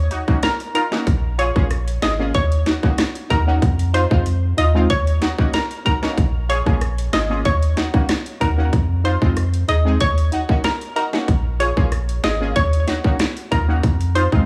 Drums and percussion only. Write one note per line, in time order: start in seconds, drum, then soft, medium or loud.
0.11 closed hi-hat medium
0.28 kick medium
0.43 cross-stick medium
0.43 snare loud
0.43 closed hi-hat medium
0.60 closed hi-hat soft
0.75 closed hi-hat medium
0.92 snare medium
1.07 kick loud
1.07 closed hi-hat medium
1.39 closed hi-hat medium
1.56 kick medium
1.71 cross-stick medium
1.71 closed hi-hat medium
1.88 closed hi-hat soft
2.02 snare loud
2.02 closed hi-hat medium
2.34 kick medium
2.34 closed hi-hat medium
2.52 closed hi-hat soft
2.66 snare medium
2.66 closed hi-hat medium
2.83 kick medium
2.98 cross-stick medium
2.98 snare loud
2.98 closed hi-hat medium
3.15 closed hi-hat soft
3.30 kick medium
3.30 closed hi-hat medium
3.62 kick loud
3.62 closed hi-hat medium
3.79 closed hi-hat soft
3.94 closed hi-hat medium
4.11 kick loud
4.26 closed hi-hat medium
4.58 closed hi-hat medium
4.90 kick medium
4.90 closed hi-hat medium
5.07 closed hi-hat soft
5.22 snare medium
5.22 closed hi-hat medium
5.39 kick medium
5.54 snare loud
5.54 closed hi-hat medium
5.71 closed hi-hat soft
5.86 kick medium
5.86 closed hi-hat medium
6.03 snare medium
6.18 kick loud
6.18 closed hi-hat medium
6.50 closed hi-hat medium
6.66 kick medium
6.81 cross-stick medium
6.81 closed hi-hat medium
6.98 closed hi-hat medium
7.13 snare loud
7.13 closed hi-hat medium
7.45 kick medium
7.45 closed hi-hat medium
7.63 closed hi-hat medium
7.77 snare medium
7.77 closed hi-hat medium
7.94 kick medium
8.09 cross-stick medium
8.09 snare loud
8.09 closed hi-hat medium
8.26 closed hi-hat soft
8.41 kick medium
8.41 closed hi-hat medium
8.73 kick loud
8.73 closed hi-hat medium
9.05 closed hi-hat medium
9.22 kick medium
9.37 cross-stick medium
9.37 closed hi-hat medium
9.54 closed hi-hat soft
9.69 closed hi-hat medium
10.00 kick medium
10.00 closed hi-hat medium
10.18 closed hi-hat soft
10.32 closed hi-hat medium
10.49 kick medium
10.64 cross-stick medium
10.64 snare loud
10.64 closed hi-hat medium
10.81 closed hi-hat soft
10.96 closed hi-hat medium
11.13 snare medium
11.28 kick loud
11.28 closed hi-hat medium
11.60 closed hi-hat medium
11.77 kick medium
11.92 cross-stick medium
11.92 closed hi-hat medium
12.09 closed hi-hat soft
12.24 snare loud
12.24 closed hi-hat medium
12.56 kick medium
12.56 closed hi-hat medium
12.73 closed hi-hat medium
12.88 snare medium
12.88 closed hi-hat medium
13.04 kick medium
13.19 cross-stick medium
13.19 snare loud
13.19 closed hi-hat medium
13.37 closed hi-hat soft
13.52 kick medium
13.52 closed hi-hat medium
13.83 kick loud
13.83 closed hi-hat medium
14.01 closed hi-hat medium
14.16 closed hi-hat medium
14.32 kick medium